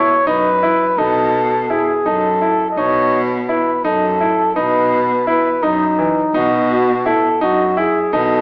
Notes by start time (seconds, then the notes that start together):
Already playing: E4 C#5
0.27 F#2 D#4 B4
0.63 E4
0.98 B2 D#4 A4
1.70 E4 G#4
2.06 F#2 D#4 A4
2.42 E4
2.71 D#5
2.77 B2 D#4 C#5
3.49 E4 B4
3.84 F#2 D#4 A4
4.21 E4
4.56 B2 D#4 B4
5.27 E4 B4
5.63 F#2 D#4
5.99 E3
6.34 B2 D#4 F#4
7.06 E4 A4
7.41 F#2 D#4 F#4
7.77 E4 G#4
8.13 B2 D#4 A4